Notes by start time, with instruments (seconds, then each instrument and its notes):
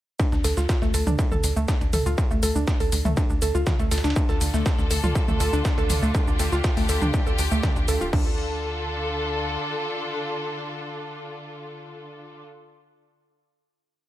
0.20 synth pluck D4, kick, ride, shaker
0.32 analog synth bass D2, synth pluck D4, snare, shaker
0.44 analog synth bass D2, synth pluck A4, snare, open hi-hat, ride, shaker
0.57 analog synth bass D2, synth pluck F4, snare, shaker
0.69 synth pluck F4, kick, snare, ride, shaker
0.82 analog synth bass D2, synth pluck A3, snare, shaker
0.94 analog synth bass D2, synth pluck A4, open hi-hat, ride, shaker
1.07 analog synth bass D2, synth pluck D4, mid tom, shaker
1.19 synth pluck D4, kick, ride, shaker
1.32 analog synth bass D2, synth pluck A4, mid tom, shaker
1.44 analog synth bass D2, open hi-hat, ride, shaker
1.56 analog synth bass D2, synth pluck A3, shaker
1.68 synth pluck D4, kick, snare, ride, shaker
1.81 analog synth bass D2, synth pluck D4, ride, shaker
1.93 analog synth bass D2, synth pluck A4, mid tom, open hi-hat, ride, shaker
2.06 analog synth bass D2, synth pluck F4, shaker
2.18 synth pluck F4, kick, ride, shaker
2.31 analog synth bass D2, synth pluck A3, shaker
2.43 analog synth bass D2, synth pluck A4, open hi-hat, ride, shaker
2.56 analog synth bass D2, synth pluck D4, shaker
2.68 synth pluck D4, kick, snare, ride, shaker
2.80 analog synth bass D2, synth pluck A4, open hi-hat, shaker
2.92 analog synth bass D2, open hi-hat, ride, shaker
3.05 analog synth bass D2, synth pluck A3, mid tom, shaker
3.17 synth pluck D4, kick, ride, shaker
3.30 analog synth bass D2, synth pluck D4, shaker
3.42 analog synth bass D2, synth pluck A4, open hi-hat, ride, shaker
3.55 analog synth bass D2, synth pluck F4, shaker
3.67 synth pluck F4, kick, snare, mid tom, ride, shaker
3.79 analog synth bass D2, synth pluck A3, ride, shaker
3.91 analog synth bass D2, synth pluck A4, snare, open hi-hat, ride, shaker
3.98 snare, ride
4.04 analog synth bass D2, synth pluck D4, snare, ride, shaker
4.10 snare, ride
4.16 string section D3 D4 F4 A4, synth pluck D4, kick, ride, shaker
4.29 analog synth bass D2, synth pluck A4, snare, shaker
4.41 analog synth bass D2, snare, open hi-hat, ride, shaker
4.54 analog synth bass D2, synth pluck A3, snare, shaker
4.66 synth pluck D4, kick, snare, ride, shaker
4.79 analog synth bass D2, synth pluck D4, snare, shaker
4.91 analog synth bass D2, synth pluck A4, open hi-hat, ride, shaker
5.04 analog synth bass D2, synth pluck F4, mid tom, shaker
5.15 synth pluck F4, kick, ride, shaker
5.28 analog synth bass D2, synth pluck A3, mid tom, shaker
5.40 analog synth bass D2, synth pluck A4, open hi-hat, ride, shaker
5.53 analog synth bass D2, synth pluck D4, shaker
5.65 synth pluck D4, kick, snare, ride, shaker
5.78 analog synth bass D2, synth pluck A4, ride, shaker
5.90 analog synth bass D2, mid tom, open hi-hat, ride, shaker
6.03 analog synth bass D2, synth pluck A3, shaker
6.15 synth pluck D4, string section G4, kick, ride, shaker
6.27 analog synth bass D2, synth pluck D4, shaker
6.39 analog synth bass D2, synth pluck A4, open hi-hat, ride, shaker
6.52 analog synth bass D2, synth pluck F4, shaker
6.64 synth pluck F4, kick, snare, ride, shaker
6.77 analog synth bass D2, synth pluck A3, open hi-hat, shaker
6.89 analog synth bass D2, synth pluck A4, open hi-hat, ride, shaker
7.02 analog synth bass D2, synth pluck D4, mid tom, shaker
7.14 synth pluck D4, kick, ride, shaker
7.27 analog synth bass D2, synth pluck A4, shaker
7.39 analog synth bass D2, open hi-hat, ride, shaker
7.51 analog synth bass D2, synth pluck A3, shaker
7.63 synth pluck D4, kick, snare, mid tom, ride, shaker
7.76 analog synth bass D2, synth pluck D4, ride, shaker
7.88 analog synth bass D2, synth pluck A4, open hi-hat, ride, shaker
8.01 analog synth bass D1, synth pluck F4, shaker
8.13 analog synth bass D2, string section D3 D4 F4 A4, synth pluck D4, kick, crash